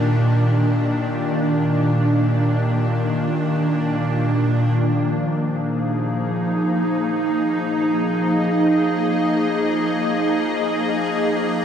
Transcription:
0.00 4.80 A#2 medium
0.00 4.80 D#3 medium
0.00 11.65 A#3 medium
0.00 4.80 D4 medium
0.00 4.80 G4 medium
0.00 4.79 D5 medium
4.79 11.65 F3 medium
5.08 11.65 G#4 loud
5.22 11.65 D#4 medium
6.95 11.65 D#5 medium

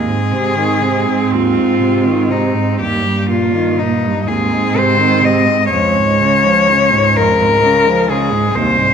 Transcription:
0.00 2.82 G#2 soft
0.00 2.80 C4 soft
0.00 1.34 G#4 soft
0.07 0.33 G#2 soft
0.32 0.58 C3 soft
0.57 0.84 D#3 soft
0.82 1.08 C3 soft
1.06 1.33 G#2 soft
1.31 1.57 D#2 soft
1.31 2.32 F4 soft
1.56 1.82 G#2 soft
1.80 2.07 C3 soft
2.06 2.31 D#3 soft
2.30 2.56 C3 soft
2.30 2.79 D#4 soft
2.55 2.79 G#2 soft
2.79 3.06 D#2 soft
2.79 4.29 G2 soft
2.79 4.29 A#3 soft
2.79 3.28 G4 soft
3.04 3.30 G2 soft
3.28 3.55 A#2 soft
3.28 3.80 F4 soft
3.53 3.79 D#3 soft
3.78 4.04 A#2 soft
3.78 4.29 D#4 soft
4.03 4.27 G2 soft
4.27 4.52 D#2 soft
4.27 5.74 G#2 soft
4.27 5.71 C4 soft
4.27 4.78 G#4 soft
4.51 4.76 G#2 soft
4.75 5.00 C3 soft
4.75 5.26 C5 medium
4.99 5.23 D#3 soft
5.22 5.48 C3 soft
5.22 5.70 D#5 medium
5.47 5.70 G#2 soft
5.70 8.55 C#2 soft
5.70 5.96 F2 soft
5.70 8.94 G#3 soft
5.70 7.18 C#5 medium
5.94 6.22 G#2 soft
6.20 6.47 C#3 soft
6.45 6.71 F3 soft
6.70 6.95 C#3 soft
6.93 7.19 G#2 soft
7.16 7.41 F2 soft
7.16 8.11 A#4 medium
7.40 7.64 G#2 soft
7.63 7.88 C#3 soft
7.86 8.11 F3 soft
8.10 8.33 C#3 soft
8.10 8.56 G#4 medium
8.32 8.55 G#2 soft
8.55 8.94 C2 soft
8.55 8.80 D#2 soft
8.55 8.94 C5 medium
8.79 8.94 G#2 soft

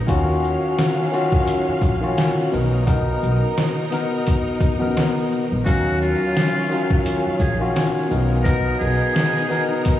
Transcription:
0.07 0.54 D#2 loud
0.07 1.05 D#3 medium
0.07 2.50 D#3 medium
0.07 2.50 F#3 medium
0.07 1.05 C#4 medium
0.07 2.51 C#4 medium
0.07 1.06 F4 medium
0.07 1.06 F#4 loud
0.07 2.50 F5 medium
0.07 kick loud
0.07 closed hi-hat medium
0.44 shaker medium
0.78 snare loud
0.78 closed hi-hat medium
1.11 1.93 D#3 medium
1.11 1.94 C#4 medium
1.11 1.94 F4 medium
1.11 1.95 F#4 loud
1.11 shaker medium
1.32 kick loud
1.48 closed hi-hat loud
1.68 muted upright bass stroke soft
1.82 2.12 A#1 loud
1.82 kick loud
1.82 closed hi-hat medium
1.82 shaker medium
2.01 2.48 D#3 medium
2.01 2.48 C#4 medium
2.01 2.49 F4 medium
2.01 2.50 F#4 medium
2.18 snare loud
2.18 closed hi-hat medium
2.51 3.12 B1 medium
2.51 2.84 B2 medium
2.51 5.63 B3 medium
2.51 2.84 B3 medium
2.51 5.63 D#4 medium
2.51 2.85 D#4 medium
2.51 5.63 A#4 medium
2.51 2.85 A#4 medium
2.51 shaker soft
2.86 3.84 B2 medium
2.86 3.84 B3 medium
2.86 3.85 D#4 medium
2.86 3.85 A#4 loud
2.86 kick loud
2.86 closed hi-hat medium
3.23 3.39 B1 loud
3.23 shaker medium
3.58 snare loud
3.58 closed hi-hat medium
3.91 4.73 B2 medium
3.91 4.73 B3 medium
3.91 4.74 D#4 medium
3.91 4.74 A#4 loud
3.91 snare soft
3.91 closed hi-hat medium
3.91 shaker medium
4.27 kick medium
4.27 closed hi-hat loud
4.61 kick loud
4.61 closed hi-hat medium
4.61 shaker medium
4.79 4.94 C#2 medium
4.79 5.44 B2 medium
4.79 5.44 B3 medium
4.79 5.44 D#4 medium
4.79 5.45 A#4 loud
4.97 snare loud
4.97 closed hi-hat medium
5.32 shaker soft
5.52 5.64 A#1 medium
5.65 6.12 D#2 loud
5.65 6.63 D#3 medium
5.65 8.08 D#3 medium
5.65 8.08 F#3 medium
5.65 6.64 F#3 loud
5.65 6.63 C#4 medium
5.65 8.08 C#4 medium
5.65 5.97 F#4 loud
5.65 8.08 F5 medium
5.65 6.64 F5 medium
5.65 kick loud
5.65 closed hi-hat medium
6.02 7.02 F4 medium
6.02 shaker medium
6.37 snare loud
6.37 closed hi-hat medium
6.70 7.52 D#3 medium
6.70 7.53 F#3 medium
6.70 7.52 C#4 medium
6.70 7.53 F4 medium
6.70 shaker medium
6.90 kick loud
7.06 closed hi-hat loud
7.26 muted upright bass stroke soft
7.40 7.70 A#1 loud
7.40 7.58 G#4 medium
7.40 kick loud
7.40 closed hi-hat medium
7.40 shaker medium
7.59 8.06 D#3 loud
7.59 8.07 C#4 medium
7.59 8.07 F4 medium
7.59 8.08 F#4 medium
7.76 snare loud
7.76 closed hi-hat medium
8.09 8.70 B1 loud
8.09 8.42 B2 medium
8.09 8.42 B3 medium
8.09 10.00 B3 medium
8.09 8.43 D#4 medium
8.09 10.00 D#4 medium
8.09 10.00 A#4 medium
8.09 8.43 A#4 medium
8.09 shaker soft
8.43 9.42 B2 medium
8.43 9.42 B3 medium
8.43 9.43 D#4 medium
8.43 8.76 A#4 medium
8.43 9.43 A#4 loud
8.43 kick loud
8.43 closed hi-hat medium
8.79 8.97 B1 medium
8.79 9.80 G#4 loud
8.79 shaker medium
9.16 snare loud
9.16 closed hi-hat medium
9.48 10.00 B2 loud
9.48 10.00 B3 medium
9.48 10.00 D#4 medium
9.48 10.00 A#4 loud
9.48 snare soft
9.48 shaker medium
9.85 kick loud
9.85 closed hi-hat loud

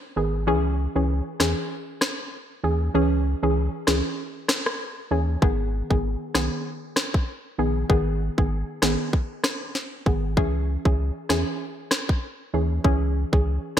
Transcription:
0.16 0.49 G#1 medium
0.16 0.45 D#3 medium
0.16 0.45 B3 medium
0.16 0.45 G#4 medium
0.47 0.88 C#2 medium
0.47 0.91 E3 medium
0.47 0.91 C#4 medium
0.47 0.92 G#4 loud
0.95 1.21 C#2 loud
0.95 1.10 E3 medium
0.95 1.10 C#4 medium
0.95 1.10 G#4 medium
1.40 1.55 E2 medium
1.40 1.58 E3 medium
1.40 1.58 C#4 medium
1.40 1.58 G#4 medium
1.40 cross-stick medium
1.40 snare loud
2.01 cross-stick medium
2.01 snare loud
2.63 2.90 D#2 loud
2.63 2.81 E3 medium
2.63 2.82 C#4 medium
2.63 2.82 G#4 medium
2.94 3.35 C#2 loud
2.94 3.39 E3 loud
2.94 3.39 C#4 medium
2.94 3.39 G#4 loud
3.43 3.69 C#2 medium
3.43 3.57 E3 medium
3.43 3.57 C#4 medium
3.43 3.57 G#4 medium
3.87 4.02 C#2 medium
3.87 4.05 E3 medium
3.87 4.05 C#4 medium
3.87 4.05 G#4 medium
3.87 cross-stick medium
3.87 snare loud
4.49 cross-stick medium
4.49 snare loud
4.66 cross-stick loud
5.11 5.37 D#2 medium
5.11 5.40 E3 medium
5.11 5.40 C#4 medium
5.11 5.40 G#4 medium
5.42 5.82 G#1 loud
5.42 5.86 D#3 medium
5.42 5.86 B3 medium
5.42 5.86 G#4 loud
5.42 kick loud
5.90 6.16 G#1 medium
5.90 6.05 D#3 medium
5.90 6.05 B3 medium
5.90 6.05 G#4 medium
5.90 kick medium
6.35 6.49 B1 medium
6.35 6.53 D#3 medium
6.35 6.53 B3 medium
6.35 6.53 G#4 medium
6.35 cross-stick medium
6.35 snare loud
6.96 cross-stick medium
6.96 snare loud
7.14 kick medium
7.58 7.84 A#1 loud
7.58 7.76 D#3 medium
7.58 7.77 B3 medium
7.58 7.77 G#4 medium
7.89 8.30 G#1 loud
7.89 8.34 D#3 loud
7.89 8.34 B3 medium
7.89 8.34 G#4 loud
7.89 kick loud
8.38 8.64 G#1 medium
8.38 8.52 D#3 medium
8.38 8.52 B3 medium
8.38 8.52 G#4 medium
8.38 kick medium
8.82 8.97 G#1 medium
8.82 9.00 D#3 medium
8.82 9.00 B3 medium
8.82 9.00 G#4 medium
8.82 cross-stick medium
8.82 snare loud
9.13 kick medium
9.44 cross-stick medium
9.44 snare loud
9.75 snare medium
10.06 10.39 G#1 medium
10.06 10.35 D#3 medium
10.06 10.35 B3 medium
10.06 10.35 G#4 medium
10.06 kick medium
10.37 10.77 C#2 medium
10.37 10.81 E3 loud
10.37 10.81 C#4 medium
10.37 10.81 G#4 loud
10.37 kick loud
10.85 11.11 C#2 loud
10.85 10.99 E3 medium
10.85 11.00 C#4 medium
10.85 11.00 G#4 medium
10.85 kick medium
11.29 11.44 E2 medium
11.29 11.48 E3 medium
11.29 11.48 C#4 medium
11.29 11.48 G#4 medium
11.29 cross-stick medium
11.29 snare loud
11.91 cross-stick medium
11.91 snare loud
12.09 kick medium
12.53 12.79 D#2 medium
12.53 12.71 E3 medium
12.53 12.71 C#4 medium
12.53 12.72 G#4 medium
12.84 13.25 C#2 loud
12.84 13.28 E3 loud
12.84 13.29 C#4 medium
12.84 13.29 G#4 loud
12.84 kick loud
13.32 13.59 C#2 loud
13.32 13.47 E3 medium
13.32 13.47 C#4 medium
13.32 13.47 G#4 medium
13.32 kick medium

